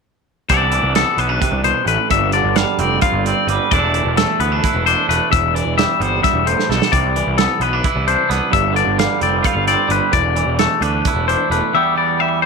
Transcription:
0.49 picked electric bass C2, clean electric guitar C3 E3 B3 D4 E4 D5, kick, closed hi-hat
0.72 clean electric guitar E3, closed hi-hat
0.83 picked electric bass C2
0.95 clean electric guitar B3 A4, snare, closed hi-hat
1.18 picked electric bass B1, clean electric guitar B3 B4, closed hi-hat
1.29 clean electric guitar D4
1.41 clean electric guitar C3, kick, closed hi-hat
1.52 picked electric bass C2
1.64 clean electric guitar B2 C5, closed hi-hat
1.85 picked electric bass A1, clean electric guitar A2 B4, closed hi-hat
2.10 picked electric bass G1, clean electric guitar G2 E5, kick, closed hi-hat
2.32 clean electric guitar D3 D5, closed hi-hat
2.44 picked electric bass G1
2.55 clean electric guitar G3 F5, snare, closed hi-hat
2.79 picked electric bass F1, clean electric guitar C4 D5, closed hi-hat
3.02 clean electric guitar F4 F5, kick, closed hi-hat
3.12 picked electric bass G1
3.25 clean electric guitar C4 D5, closed hi-hat
3.47 picked electric bass G1, clean electric guitar G3 B4, closed hi-hat
3.71 picked electric bass E1, clean electric guitar E2 E3 A3 D4 E4 D5, kick, closed hi-hat
3.94 clean electric guitar E3, closed hi-hat
4.05 picked electric bass E1
4.17 clean electric guitar A3 A4, snare, closed hi-hat
4.40 picked electric bass D2, clean electric guitar B3 B4, closed hi-hat
4.52 clean electric guitar D4
4.64 clean electric guitar E4, kick, closed hi-hat
4.74 picked electric bass E1
4.86 clean electric guitar D4 C5, closed hi-hat
5.09 picked electric bass E1, clean electric guitar A3 B4, closed hi-hat
5.31 picked electric bass E1, clean electric guitar E2 E5, kick, closed hi-hat
5.55 clean electric guitar E3 D5, closed hi-hat
5.65 picked electric bass E1
5.78 clean electric guitar G3 E5, snare, closed hi-hat
6.00 picked electric bass G1, clean electric guitar B3 C5, closed hi-hat
6.22 clean electric guitar G2 E5, kick, snare, closed hi-hat
6.34 picked electric bass E1
6.46 clean electric guitar A2 C5, closed hi-hat
6.59 snare
6.69 picked electric bass B1, clean electric guitar B2 A4, snare
6.82 snare
6.92 picked electric bass C2, clean electric guitar C3 D5, kick, closed hi-hat
7.16 clean electric guitar E3, closed hi-hat
7.27 picked electric bass C2
7.38 clean electric guitar B3 A4, snare, closed hi-hat
7.60 picked electric bass B1, clean electric guitar B3 B4, closed hi-hat
7.73 clean electric guitar D4
7.84 clean electric guitar E4, kick, closed hi-hat
7.96 picked electric bass C2
8.07 clean electric guitar D4 C5, closed hi-hat
8.29 picked electric bass C2, clean electric guitar B3 B4, snare, closed hi-hat
8.51 picked electric bass G1, clean electric guitar G2 E5, kick, closed hi-hat
8.73 clean electric guitar D3 D5, closed hi-hat
8.87 picked electric bass G1
8.98 clean electric guitar G3 F5, snare, closed hi-hat
9.21 picked electric bass F1, clean electric guitar C4 D5, closed hi-hat
9.43 clean electric guitar F4 F5, kick, closed hi-hat
9.55 picked electric bass G1
9.67 clean electric guitar C4 D5, closed hi-hat
9.88 picked electric bass G1, clean electric guitar G3 B4, closed hi-hat
10.12 picked electric bass E1, clean electric guitar E2 D5, kick, closed hi-hat
10.36 clean electric guitar E3, closed hi-hat
10.46 picked electric bass E1
10.59 clean electric guitar A3 A4, snare, closed hi-hat
10.81 picked electric bass D2, clean electric guitar D4 B4, closed hi-hat
11.05 clean electric guitar E4, kick, closed hi-hat
11.14 picked electric bass E1
11.28 clean electric guitar D4 C5, closed hi-hat
11.50 picked electric bass E1, clean electric guitar A3 B4, closed hi-hat
11.74 clean electric guitar E2 E3 G3 B3 G4 E5
11.96 clean electric guitar E3 D5
12.19 clean electric guitar G3 E5
12.42 clean electric guitar C5

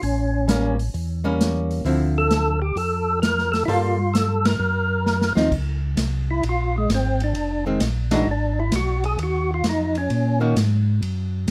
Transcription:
0.02 tonewheel organ A1 C#4, open hi-hat
0.48 hollow-body jazz guitar G3 A#3 C#4, snare, closed hi-hat
0.79 open hi-hat
0.94 tonewheel organ E2, open hi-hat
1.24 hollow-body jazz guitar G3 A#3 C#4
1.41 snare, closed hi-hat
1.71 open hi-hat
1.85 tonewheel organ D2, hollow-body jazz guitar D3 F3 C4 E4, open hi-hat
2.18 tonewheel organ A4
2.31 snare, closed hi-hat
2.62 tonewheel organ G4
2.76 tonewheel organ F2 A4, open hi-hat
3.22 tonewheel organ A#4, snare, closed hi-hat
3.38 snare
3.52 tonewheel organ A4, snare, open hi-hat
3.65 tonewheel organ G2 E4 F4, hollow-body jazz guitar G3 A#3 F4 A4, open hi-hat
4.14 tonewheel organ A4, snare, closed hi-hat
4.45 tonewheel organ A#4, snare, ride
4.60 tonewheel organ F#2
5.06 snare
5.21 snare
5.35 tonewheel organ D#2, hollow-body jazz guitar F3 C4 D#4, snare
5.51 tonewheel organ C#2, kick, crash
5.97 tonewheel organ C2, snare, hi-hat pedal, ride
6.31 tonewheel organ E4
6.43 tonewheel organ A#1, ride
6.49 tonewheel organ F4
6.78 tonewheel organ G#3
6.89 tonewheel organ G#1, snare, hi-hat pedal, ride
6.95 tonewheel organ C4
7.20 tonewheel organ D4, ride
7.34 tonewheel organ F1, ride
7.66 hollow-body jazz guitar D#3 G#3 C4
7.80 tonewheel organ A#1, snare, hi-hat pedal, ride
8.11 hollow-body jazz guitar E3 G#3 D4 F#4, tonewheel organ D#4, snare, ride
8.26 tonewheel organ G#1
8.31 tonewheel organ D4
8.60 tonewheel organ E4
8.72 tonewheel organ B1 F#4, snare, hi-hat pedal, ride
9.04 tonewheel organ G#4, ride
9.18 tonewheel organ D#2, ride
9.23 tonewheel organ F#4
9.54 tonewheel organ F4
9.64 tonewheel organ F2, snare, hi-hat pedal, ride
9.69 tonewheel organ D#4
9.95 tonewheel organ C#4, ride
10.10 tonewheel organ A#2, ride
10.40 hollow-body jazz guitar D#3 A#3 C#4 F#4
10.56 tonewheel organ G#2, snare, hi-hat pedal, ride
11.02 tonewheel organ F#2, ride
11.48 hi-hat pedal, ride

